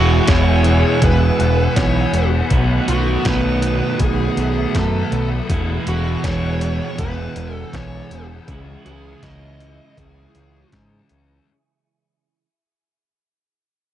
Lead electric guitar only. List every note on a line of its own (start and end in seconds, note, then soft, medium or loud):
0.00 0.31 F#4 medium
0.29 1.05 C#5 medium
1.04 1.80 B4 medium
1.76 2.28 C#5 medium
2.89 3.27 F#4 medium
3.27 4.01 B4 medium
4.02 4.77 G#4 medium
4.78 5.28 A4 medium
5.88 6.26 F#4 medium
6.24 7.01 C#5 medium
6.99 7.55 B4 medium
7.55 7.76 A4 medium
7.74 8.26 C#5 medium
8.86 9.24 G#4 medium
9.23 10.00 D#5 medium
9.99 10.69 G#4 medium